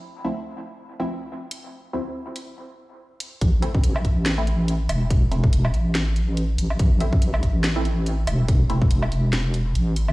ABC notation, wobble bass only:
X:1
M:4/4
L:1/8
Q:"Swing 16ths" 1/4=142
K:Am
V:1 name="Wobble bass" clef=bass
z8 | z8 | A,,,3 A,,,4 E,,,- | E,,,3 A,,,4 A,,, |
A,,,3 A,,,4 E,,,- | E,,,3 E,,,3 A,,,2 |]